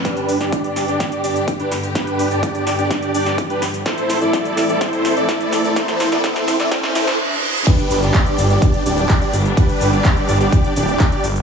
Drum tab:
CC |----------------|----------------|----------------|----------------|
HH |xxoxxxoxxxoxxxox|xxoxxxoxxxoxxxox|xxoxxxoxxxoxxxox|xxoxxxoxxxox----|
SH |xxxxxxxxxxxxxxxx|xxxxxxxxxxxxxxxx|xxxxxxxxxxxxxxxx|xxxxxxxxxxxx----|
CP |----------------|----------------|----------------|----------------|
SD |o--o--o-o-----o-|o-----o-o--o--o-|o-o-o-o-o-o-o-o-|oooooooooooo----|
BD |o---o---o---o---|o---o---o---o---|o---o---o---o---|o---o---o-------|

CC |x---------------|----------------|
HH |xxoxxxoxxxoxxxox|xxoxxxoxxxoxxxox|
SH |xxxxxxxxxxxxxxxx|xxxxxxxxxxxxxxxx|
CP |----x-------x---|----x-x-----x---|
SD |----------------|----------------|
BD |o---o---o---o---|o---o---o---o---|